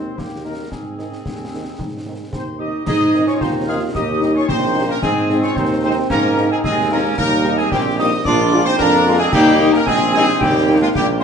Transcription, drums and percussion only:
0.18 concert bass drum, snare
0.72 concert bass drum, snare
0.99 snare
1.12 snare
1.26 concert bass drum, snare
1.79 concert bass drum, snare
2.33 concert bass drum, snare
2.87 concert bass drum, snare, crash
3.14 snare
3.28 snare
3.41 concert bass drum, snare
3.95 concert bass drum, snare
4.22 snare
4.49 concert bass drum, snare
5.03 concert bass drum, snare, crash
5.30 snare
5.43 snare
5.56 concert bass drum, snare
6.10 concert bass drum, snare
6.37 snare
6.64 concert bass drum, snare
7.18 concert bass drum, snare, crash
7.45 snare
7.59 snare
7.72 concert bass drum, snare
8.25 concert bass drum, snare
8.52 snare
8.80 concert bass drum, snare
9.33 concert bass drum, snare, crash
9.60 snare
9.74 snare
9.87 concert bass drum, snare
10.41 concert bass drum, snare
10.95 concert bass drum, snare

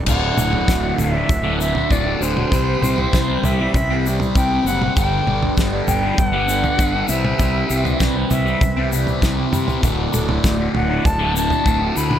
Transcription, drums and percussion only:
0.06 kick, floor tom, crash, shaker
0.38 mid tom, shaker
0.53 floor tom
0.68 kick, snare, shaker
0.98 floor tom, shaker
1.29 kick, floor tom, shaker
1.61 shaker
1.75 floor tom
1.91 kick, shaker
2.22 shaker
2.37 mid tom
2.52 kick, floor tom, shaker
2.82 mid tom, shaker
2.98 floor tom
3.13 kick, snare, shaker
3.44 floor tom, shaker
3.74 kick, floor tom, shaker
4.06 shaker
4.20 floor tom, shaker
4.35 kick, shaker
4.67 shaker
4.82 mid tom
4.97 kick, floor tom, shaker
5.27 mid tom
5.42 floor tom
5.58 kick, snare, shaker
5.88 floor tom, shaker
6.18 kick, floor tom, shaker
6.49 shaker
6.64 floor tom, shaker
6.79 kick, shaker
7.09 shaker
7.25 mid tom
7.39 kick, floor tom, shaker
7.70 shaker
7.85 floor tom, shaker
8.00 kick, snare, mid tom, shaker
8.31 floor tom, shaker
8.47 shaker
8.61 kick, floor tom, shaker
8.92 shaker
9.07 floor tom, shaker
9.22 kick, snare, shaker
9.53 mid tom, shaker
9.68 floor tom, shaker
9.83 kick, floor tom, shaker
10.14 mid tom, shaker
10.29 floor tom
10.44 kick, snare, shaker
10.75 floor tom
11.05 kick, floor tom, shaker
11.36 shaker
11.50 floor tom, shaker
11.66 kick, shaker
11.97 shaker
12.11 mid tom

